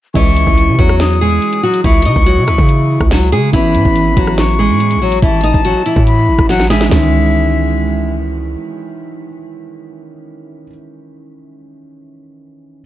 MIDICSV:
0, 0, Header, 1, 6, 480
1, 0, Start_track
1, 0, Key_signature, 4, "minor"
1, 0, Tempo, 422535
1, 175, Time_signature, 4, 2, 24, 8
1, 14607, End_track
2, 0, Start_track
2, 0, Title_t, "Flute"
2, 0, Program_c, 0, 73
2, 171, Note_on_c, 0, 85, 122
2, 1088, Note_off_c, 0, 85, 0
2, 1138, Note_on_c, 0, 87, 101
2, 2051, Note_off_c, 0, 87, 0
2, 2089, Note_on_c, 0, 85, 110
2, 3486, Note_off_c, 0, 85, 0
2, 4018, Note_on_c, 0, 83, 108
2, 4931, Note_off_c, 0, 83, 0
2, 4974, Note_on_c, 0, 85, 87
2, 5889, Note_off_c, 0, 85, 0
2, 5939, Note_on_c, 0, 81, 110
2, 6851, Note_off_c, 0, 81, 0
2, 6896, Note_on_c, 0, 83, 89
2, 7347, Note_off_c, 0, 83, 0
2, 7377, Note_on_c, 0, 78, 94
2, 7604, Note_off_c, 0, 78, 0
2, 7618, Note_on_c, 0, 76, 86
2, 7844, Note_off_c, 0, 76, 0
2, 7853, Note_on_c, 0, 76, 99
2, 9248, Note_off_c, 0, 76, 0
2, 14607, End_track
3, 0, Start_track
3, 0, Title_t, "Nylon-string guitar"
3, 0, Program_c, 1, 24
3, 175, Note_on_c, 1, 64, 120
3, 183, Note_on_c, 1, 52, 87
3, 852, Note_off_c, 1, 64, 0
3, 856, Note_off_c, 1, 52, 0
3, 894, Note_on_c, 1, 66, 82
3, 903, Note_on_c, 1, 54, 63
3, 1346, Note_off_c, 1, 66, 0
3, 1350, Note_off_c, 1, 54, 0
3, 1376, Note_on_c, 1, 68, 93
3, 1386, Note_on_c, 1, 56, 67
3, 1827, Note_off_c, 1, 68, 0
3, 1832, Note_off_c, 1, 56, 0
3, 1856, Note_on_c, 1, 66, 95
3, 1865, Note_on_c, 1, 54, 64
3, 2045, Note_off_c, 1, 66, 0
3, 2051, Note_off_c, 1, 54, 0
3, 2095, Note_on_c, 1, 64, 88
3, 2104, Note_on_c, 1, 52, 69
3, 2285, Note_off_c, 1, 64, 0
3, 2290, Note_off_c, 1, 52, 0
3, 2333, Note_on_c, 1, 63, 82
3, 2343, Note_on_c, 1, 75, 69
3, 2524, Note_off_c, 1, 63, 0
3, 2530, Note_off_c, 1, 75, 0
3, 2568, Note_on_c, 1, 66, 87
3, 2578, Note_on_c, 1, 54, 65
3, 2761, Note_off_c, 1, 66, 0
3, 2767, Note_off_c, 1, 54, 0
3, 2808, Note_on_c, 1, 64, 77
3, 2816, Note_on_c, 1, 52, 58
3, 3488, Note_off_c, 1, 64, 0
3, 3492, Note_off_c, 1, 52, 0
3, 3537, Note_on_c, 1, 66, 86
3, 3545, Note_on_c, 1, 54, 66
3, 3726, Note_off_c, 1, 66, 0
3, 3731, Note_off_c, 1, 54, 0
3, 3775, Note_on_c, 1, 68, 90
3, 3784, Note_on_c, 1, 56, 66
3, 3965, Note_off_c, 1, 68, 0
3, 3970, Note_off_c, 1, 56, 0
3, 4016, Note_on_c, 1, 64, 119
3, 4024, Note_on_c, 1, 52, 98
3, 4692, Note_off_c, 1, 64, 0
3, 4697, Note_off_c, 1, 52, 0
3, 4735, Note_on_c, 1, 66, 86
3, 4745, Note_on_c, 1, 54, 65
3, 5186, Note_off_c, 1, 66, 0
3, 5191, Note_off_c, 1, 54, 0
3, 5212, Note_on_c, 1, 68, 88
3, 5222, Note_on_c, 1, 56, 71
3, 5665, Note_off_c, 1, 68, 0
3, 5670, Note_off_c, 1, 56, 0
3, 5698, Note_on_c, 1, 66, 87
3, 5706, Note_on_c, 1, 54, 70
3, 5887, Note_off_c, 1, 66, 0
3, 5892, Note_off_c, 1, 54, 0
3, 5935, Note_on_c, 1, 64, 82
3, 5944, Note_on_c, 1, 52, 73
3, 6125, Note_off_c, 1, 64, 0
3, 6130, Note_off_c, 1, 52, 0
3, 6172, Note_on_c, 1, 63, 87
3, 6182, Note_on_c, 1, 75, 69
3, 6363, Note_off_c, 1, 63, 0
3, 6369, Note_off_c, 1, 75, 0
3, 6416, Note_on_c, 1, 66, 83
3, 6424, Note_on_c, 1, 54, 68
3, 6605, Note_off_c, 1, 66, 0
3, 6611, Note_off_c, 1, 54, 0
3, 6657, Note_on_c, 1, 64, 80
3, 6666, Note_on_c, 1, 52, 60
3, 7333, Note_off_c, 1, 64, 0
3, 7338, Note_off_c, 1, 52, 0
3, 7377, Note_on_c, 1, 66, 81
3, 7386, Note_on_c, 1, 54, 67
3, 7566, Note_off_c, 1, 66, 0
3, 7571, Note_off_c, 1, 54, 0
3, 7610, Note_on_c, 1, 68, 86
3, 7620, Note_on_c, 1, 56, 65
3, 7802, Note_off_c, 1, 68, 0
3, 7808, Note_off_c, 1, 56, 0
3, 7854, Note_on_c, 1, 56, 87
3, 9249, Note_off_c, 1, 56, 0
3, 14607, End_track
4, 0, Start_track
4, 0, Title_t, "Grand piano"
4, 0, Program_c, 2, 0
4, 158, Note_on_c, 2, 52, 70
4, 167, Note_on_c, 2, 56, 64
4, 176, Note_on_c, 2, 61, 62
4, 185, Note_on_c, 2, 75, 70
4, 381, Control_c, 2, 64, 127
4, 3961, Note_off_c, 2, 52, 0
4, 3965, Note_off_c, 2, 56, 0
4, 3970, Note_off_c, 2, 61, 0
4, 3975, Note_off_c, 2, 75, 0
4, 4004, Note_on_c, 2, 52, 69
4, 4022, Note_on_c, 2, 59, 68
4, 4031, Control_c, 2, 64, 0
4, 4031, Note_on_c, 2, 61, 73
4, 4217, Control_c, 2, 64, 127
4, 7804, Note_off_c, 2, 52, 0
4, 7813, Note_off_c, 2, 59, 0
4, 7817, Note_off_c, 2, 61, 0
4, 7828, Note_on_c, 2, 52, 90
4, 7855, Note_on_c, 2, 61, 81
4, 7870, Control_c, 2, 64, 0
4, 7881, Note_on_c, 2, 51, 101
4, 8063, Control_c, 2, 64, 127
4, 12075, Note_off_c, 2, 52, 0
4, 12101, Note_off_c, 2, 61, 0
4, 12128, Note_off_c, 2, 51, 0
4, 14548, Control_c, 2, 64, 0
4, 14607, End_track
5, 0, Start_track
5, 0, Title_t, "808-style bass"
5, 0, Program_c, 3, 38
5, 175, Note_on_c, 3, 37, 112
5, 520, Note_off_c, 3, 37, 0
5, 535, Note_on_c, 3, 37, 108
5, 774, Note_on_c, 3, 49, 105
5, 791, Note_off_c, 3, 37, 0
5, 889, Note_off_c, 3, 49, 0
5, 894, Note_on_c, 3, 40, 104
5, 1585, Note_off_c, 3, 40, 0
5, 2094, Note_on_c, 3, 37, 106
5, 2334, Note_on_c, 3, 49, 102
5, 2351, Note_off_c, 3, 37, 0
5, 2449, Note_off_c, 3, 49, 0
5, 2455, Note_on_c, 3, 37, 107
5, 2695, Note_on_c, 3, 49, 98
5, 2712, Note_off_c, 3, 37, 0
5, 2815, Note_on_c, 3, 37, 100
5, 2832, Note_off_c, 3, 49, 0
5, 2929, Note_off_c, 3, 37, 0
5, 2934, Note_on_c, 3, 49, 102
5, 3395, Note_off_c, 3, 49, 0
5, 3414, Note_on_c, 3, 37, 105
5, 3775, Note_on_c, 3, 49, 101
5, 3793, Note_off_c, 3, 37, 0
5, 4003, Note_off_c, 3, 49, 0
5, 4015, Note_on_c, 3, 33, 110
5, 4255, Note_on_c, 3, 45, 100
5, 4272, Note_off_c, 3, 33, 0
5, 4369, Note_off_c, 3, 45, 0
5, 4375, Note_on_c, 3, 33, 107
5, 4615, Note_on_c, 3, 32, 99
5, 4632, Note_off_c, 3, 33, 0
5, 4729, Note_off_c, 3, 32, 0
5, 4735, Note_on_c, 3, 33, 108
5, 5335, Note_on_c, 3, 45, 99
5, 5352, Note_off_c, 3, 33, 0
5, 5635, Note_on_c, 3, 33, 100
5, 5652, Note_off_c, 3, 45, 0
5, 5920, Note_off_c, 3, 33, 0
5, 5935, Note_on_c, 3, 33, 113
5, 6280, Note_off_c, 3, 33, 0
5, 6295, Note_on_c, 3, 33, 104
5, 6525, Note_off_c, 3, 33, 0
5, 6774, Note_on_c, 3, 45, 109
5, 7135, Note_on_c, 3, 32, 102
5, 7152, Note_off_c, 3, 45, 0
5, 7249, Note_off_c, 3, 32, 0
5, 7254, Note_on_c, 3, 33, 102
5, 7831, Note_off_c, 3, 33, 0
5, 7855, Note_on_c, 3, 37, 112
5, 9729, Note_off_c, 3, 37, 0
5, 14607, End_track
6, 0, Start_track
6, 0, Title_t, "Drums"
6, 175, Note_on_c, 9, 36, 114
6, 175, Note_on_c, 9, 42, 82
6, 288, Note_off_c, 9, 36, 0
6, 288, Note_off_c, 9, 42, 0
6, 415, Note_on_c, 9, 42, 81
6, 529, Note_off_c, 9, 42, 0
6, 535, Note_on_c, 9, 36, 97
6, 648, Note_off_c, 9, 36, 0
6, 655, Note_on_c, 9, 42, 92
6, 768, Note_off_c, 9, 42, 0
6, 894, Note_on_c, 9, 36, 102
6, 894, Note_on_c, 9, 42, 85
6, 1008, Note_off_c, 9, 36, 0
6, 1008, Note_off_c, 9, 42, 0
6, 1015, Note_on_c, 9, 37, 93
6, 1129, Note_off_c, 9, 37, 0
6, 1134, Note_on_c, 9, 38, 105
6, 1134, Note_on_c, 9, 42, 92
6, 1248, Note_off_c, 9, 38, 0
6, 1248, Note_off_c, 9, 42, 0
6, 1614, Note_on_c, 9, 42, 59
6, 1728, Note_off_c, 9, 42, 0
6, 1734, Note_on_c, 9, 42, 59
6, 1848, Note_off_c, 9, 42, 0
6, 1974, Note_on_c, 9, 42, 82
6, 2088, Note_off_c, 9, 42, 0
6, 2094, Note_on_c, 9, 36, 113
6, 2094, Note_on_c, 9, 42, 83
6, 2208, Note_off_c, 9, 36, 0
6, 2208, Note_off_c, 9, 42, 0
6, 2334, Note_on_c, 9, 42, 83
6, 2448, Note_off_c, 9, 42, 0
6, 2454, Note_on_c, 9, 36, 97
6, 2568, Note_off_c, 9, 36, 0
6, 2574, Note_on_c, 9, 42, 91
6, 2688, Note_off_c, 9, 42, 0
6, 2814, Note_on_c, 9, 37, 83
6, 2814, Note_on_c, 9, 42, 88
6, 2928, Note_off_c, 9, 37, 0
6, 2928, Note_off_c, 9, 42, 0
6, 2934, Note_on_c, 9, 36, 101
6, 3047, Note_off_c, 9, 36, 0
6, 3054, Note_on_c, 9, 42, 91
6, 3167, Note_off_c, 9, 42, 0
6, 3414, Note_on_c, 9, 36, 99
6, 3415, Note_on_c, 9, 37, 90
6, 3528, Note_off_c, 9, 36, 0
6, 3528, Note_off_c, 9, 37, 0
6, 3534, Note_on_c, 9, 38, 123
6, 3647, Note_off_c, 9, 38, 0
6, 3775, Note_on_c, 9, 42, 77
6, 3889, Note_off_c, 9, 42, 0
6, 4015, Note_on_c, 9, 36, 115
6, 4015, Note_on_c, 9, 42, 82
6, 4128, Note_off_c, 9, 36, 0
6, 4128, Note_off_c, 9, 42, 0
6, 4254, Note_on_c, 9, 42, 80
6, 4368, Note_off_c, 9, 42, 0
6, 4375, Note_on_c, 9, 36, 101
6, 4488, Note_off_c, 9, 36, 0
6, 4494, Note_on_c, 9, 42, 90
6, 4608, Note_off_c, 9, 42, 0
6, 4735, Note_on_c, 9, 36, 98
6, 4735, Note_on_c, 9, 42, 84
6, 4848, Note_off_c, 9, 36, 0
6, 4849, Note_off_c, 9, 42, 0
6, 4855, Note_on_c, 9, 37, 93
6, 4969, Note_off_c, 9, 37, 0
6, 4975, Note_on_c, 9, 38, 105
6, 4975, Note_on_c, 9, 42, 88
6, 5088, Note_off_c, 9, 38, 0
6, 5088, Note_off_c, 9, 42, 0
6, 5455, Note_on_c, 9, 42, 60
6, 5568, Note_off_c, 9, 42, 0
6, 5575, Note_on_c, 9, 42, 60
6, 5688, Note_off_c, 9, 42, 0
6, 5815, Note_on_c, 9, 42, 80
6, 5929, Note_off_c, 9, 42, 0
6, 5935, Note_on_c, 9, 36, 120
6, 5935, Note_on_c, 9, 42, 79
6, 6049, Note_off_c, 9, 36, 0
6, 6049, Note_off_c, 9, 42, 0
6, 6175, Note_on_c, 9, 42, 80
6, 6289, Note_off_c, 9, 42, 0
6, 6295, Note_on_c, 9, 36, 96
6, 6409, Note_off_c, 9, 36, 0
6, 6415, Note_on_c, 9, 42, 92
6, 6528, Note_off_c, 9, 42, 0
6, 6655, Note_on_c, 9, 42, 84
6, 6769, Note_off_c, 9, 42, 0
6, 6774, Note_on_c, 9, 36, 100
6, 6888, Note_off_c, 9, 36, 0
6, 6895, Note_on_c, 9, 42, 88
6, 7008, Note_off_c, 9, 42, 0
6, 7254, Note_on_c, 9, 36, 102
6, 7255, Note_on_c, 9, 37, 91
6, 7368, Note_off_c, 9, 36, 0
6, 7369, Note_off_c, 9, 37, 0
6, 7375, Note_on_c, 9, 38, 63
6, 7489, Note_off_c, 9, 38, 0
6, 7495, Note_on_c, 9, 38, 70
6, 7608, Note_off_c, 9, 38, 0
6, 7615, Note_on_c, 9, 38, 98
6, 7615, Note_on_c, 9, 42, 77
6, 7728, Note_off_c, 9, 38, 0
6, 7728, Note_off_c, 9, 42, 0
6, 7734, Note_on_c, 9, 38, 101
6, 7848, Note_off_c, 9, 38, 0
6, 7854, Note_on_c, 9, 38, 106
6, 7854, Note_on_c, 9, 43, 104
6, 7854, Note_on_c, 9, 46, 88
6, 7968, Note_off_c, 9, 38, 0
6, 7968, Note_off_c, 9, 43, 0
6, 7968, Note_off_c, 9, 46, 0
6, 14607, End_track
0, 0, End_of_file